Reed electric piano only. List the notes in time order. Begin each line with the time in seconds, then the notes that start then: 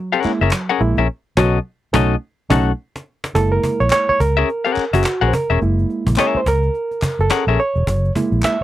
Already playing: F#3
0.24 G#3 A#3 E4
0.41 A#3 E4
0.52 F#3
0.80 G#3 A#3 E4
0.98 A#3 E4
1.37 B2 F#3
1.93 A3 C#4 D#4
2.50 A3 C#4 D#4
3.35 G#3 A#3 E4 A4
3.52 A#4
3.80 C#5
3.92 C#5
4.09 C#5
4.20 A#4
4.95 F#4
5.28 C5
5.34 A#4
5.61 G#3 A#3 E4
6.20 C#5
6.37 C5
6.48 A#4
7.21 A4
7.60 C#5
8.15 G#3 A#3 E4
8.45 E5